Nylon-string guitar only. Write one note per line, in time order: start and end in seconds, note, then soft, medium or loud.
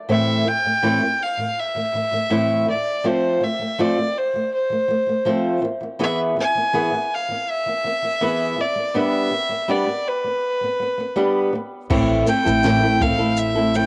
0.09 0.45 A2 medium
0.09 0.46 E3 medium
0.09 0.47 A3 medium
0.09 0.47 C4 medium
0.09 0.47 E4 medium
0.09 0.47 C5 medium
0.46 0.63 A2 medium
0.46 0.64 E3 medium
0.46 0.65 A3 medium
0.64 0.81 A2 soft
0.64 0.82 E3 soft
0.64 0.82 A3 soft
0.82 0.99 A2 medium
0.82 1.01 E3 medium
0.82 1.02 A3 medium
0.82 1.02 C4 medium
0.82 1.02 E4 medium
0.82 1.03 C5 medium
1.00 1.31 A2 soft
1.00 1.32 E3 soft
1.00 1.32 A3 soft
1.37 1.68 A2 soft
1.37 1.68 E3 soft
1.37 1.69 A3 soft
1.75 1.92 A2 soft
1.75 1.93 E3 soft
1.75 1.95 A3 soft
1.93 2.10 A2 soft
1.93 2.12 E3 soft
1.93 2.13 A3 medium
2.11 2.28 A2 soft
2.11 2.29 E3 soft
2.11 2.29 A3 soft
2.30 2.65 A2 medium
2.30 2.67 E3 medium
2.30 2.68 A3 medium
2.30 2.68 C4 medium
2.30 2.68 E4 medium
2.30 2.68 C5 medium
2.67 2.97 A2 soft
2.67 2.98 E3 medium
2.67 2.98 A3 medium
3.04 3.40 F3 medium
3.04 3.42 A3 medium
3.04 3.42 C4 medium
3.04 3.42 F4 medium
3.04 3.42 C5 medium
3.41 3.58 F3 medium
3.41 3.60 A3 medium
3.59 3.77 F3 soft
3.59 3.78 A3 soft
3.78 3.95 F3 medium
3.78 3.97 A3 medium
3.78 3.98 C4 medium
3.78 3.98 F4 medium
3.78 3.98 C5 medium
3.96 4.26 F3 soft
3.96 4.28 A3 medium
4.34 4.63 F3 soft
4.34 4.65 A3 soft
4.70 4.87 F3 soft
4.70 4.90 A3 soft
4.88 5.05 F3 soft
4.88 5.08 A3 medium
5.07 5.24 F3 soft
5.07 5.25 A3 soft
5.25 5.62 F3 medium
5.25 5.63 A3 medium
5.25 5.63 C4 medium
5.25 5.63 F4 medium
5.25 5.64 C5 medium
5.62 5.79 E3 medium
5.62 5.82 B3 medium
5.81 5.98 E3 soft
5.81 5.99 B3 soft
5.99 6.35 E3 medium
5.99 6.37 B3 medium
5.99 6.37 E4 medium
5.99 6.37 G#4 medium
5.99 6.38 B4 medium
6.37 6.54 E3 medium
6.37 6.56 B3 medium
6.55 6.72 E3 soft
6.55 6.73 B3 soft
6.73 6.90 E3 medium
6.73 6.92 B3 medium
6.73 6.93 E4 medium
6.73 6.93 G#4 medium
6.73 6.93 B4 medium
6.92 7.22 E3 soft
6.92 7.23 B3 medium
7.29 7.59 E3 soft
7.29 7.60 B3 soft
7.66 7.83 E3 soft
7.66 7.85 B3 soft
7.84 8.01 E3 medium
7.84 8.04 B3 medium
8.02 8.20 E3 soft
8.02 8.20 B3 soft
8.21 8.57 E3 medium
8.21 8.58 B3 medium
8.21 8.59 E4 medium
8.21 8.59 G#4 medium
8.21 8.59 B4 medium
8.58 8.74 G3 soft
8.58 8.77 B3 medium
8.76 8.93 G3 soft
8.76 8.93 B3 soft
8.94 9.30 G3 medium
8.94 9.32 B3 medium
8.94 9.32 D4 medium
8.94 9.32 G4 medium
8.94 9.33 B4 medium
9.31 9.48 G3 medium
9.31 9.51 B3 medium
9.49 9.67 G3 soft
9.49 9.67 B3 soft
9.68 9.85 G3 medium
9.68 9.87 B3 medium
9.68 9.88 D4 medium
9.68 9.88 G4 medium
9.68 9.88 B4 medium
9.87 10.17 G3 soft
9.87 10.18 B3 medium
10.24 10.54 G3 soft
10.24 10.55 B3 soft
10.61 10.78 G3 soft
10.61 10.81 B3 soft
10.79 10.96 G3 medium
10.79 10.99 B3 medium
10.98 11.14 G3 soft
10.98 11.15 B3 medium
11.16 11.52 G3 medium
11.16 11.53 B3 medium
11.16 11.54 D4 medium
11.16 11.54 G4 medium
11.16 11.54 B4 medium
11.53 11.83 G3 medium
11.53 11.84 B3 medium
11.90 12.27 A2 medium
11.90 12.27 E3 medium
11.90 12.25 A3 medium
11.90 12.26 C4 medium
11.90 12.27 E4 medium
11.90 12.28 A4 medium
12.26 12.45 A3 medium
12.26 12.46 C4 medium
12.26 12.45 E4 medium
12.26 12.44 A4 medium
12.45 12.64 A3 soft
12.45 12.64 C4 soft
12.45 12.64 E4 soft
12.45 12.64 A4 medium
12.64 12.82 A2 medium
12.64 12.83 E3 medium
12.64 12.83 A3 medium
12.64 12.83 C4 medium
12.64 12.82 E4 medium
12.64 12.81 A4 medium
12.82 12.99 A3 soft
12.82 13.00 C4 soft
12.82 13.01 E4 medium
12.82 13.01 A4 medium
13.00 13.19 A3 medium
13.00 13.19 C4 medium
13.00 13.18 E4 medium
13.00 13.17 A4 medium
13.19 13.57 A3 soft
13.19 13.56 C4 soft
13.19 13.55 E4 soft
13.19 13.54 A4 medium
13.55 13.73 A3 soft
13.55 13.74 C4 soft
13.55 13.75 E4 soft
13.55 13.74 A4 medium
13.74 13.86 A3 medium
13.74 13.86 C4 medium
13.74 13.86 E4 medium
13.74 13.86 A4 medium